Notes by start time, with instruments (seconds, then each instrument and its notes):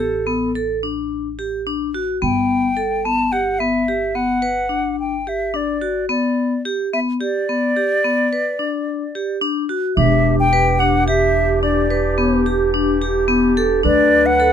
Already playing: upright bass A1, flute A4
0.00 vibraphone G4
0.27 vibraphone B3
0.55 vibraphone A4
0.83 vibraphone D4
1.39 vibraphone G4
1.67 vibraphone D4
1.94 vibraphone F#4
2.22 upright bass G1, vibraphone B3, flute G5
2.77 vibraphone A4
3.05 vibraphone B3, flute A5
3.32 vibraphone G4, flute F#5
3.59 vibraphone B3, flute E5
3.88 vibraphone G4
4.15 vibraphone B3, flute F#5
4.42 vibraphone B4
4.69 vibraphone D4
5.00 flute G5
5.27 vibraphone G4, flute E5
5.54 vibraphone D4, flute D5
5.82 vibraphone F#4
6.09 vibraphone B3, flute D5
6.65 vibraphone G4
6.93 vibraphone B3, flute E5
7.20 vibraphone G4, flute D5
7.49 vibraphone B3
7.76 vibraphone G4
8.05 vibraphone B3
8.33 vibraphone B4
8.59 vibraphone D4
9.15 vibraphone G4
9.42 vibraphone D4
9.69 vibraphone F#4
9.97 upright bass E1, woodwind section E3 D4 G4, vibraphone D4, clarinet G4, flute E5
10.40 flute G5
10.53 vibraphone B4
10.79 vibraphone D4, flute F#5
11.08 vibraphone G4, flute E5
11.63 vibraphone D4, flute D5
11.90 woodwind section D4, vibraphone B4
12.18 vibraphone B3
12.46 vibraphone G4
12.74 vibraphone D4
13.02 vibraphone G4
13.28 vibraphone B3
13.57 vibraphone A4
13.83 upright bass D2, woodwind section D3 F#3, vibraphone D4, clarinet B4, flute D5
14.26 flute F#5
14.40 vibraphone A4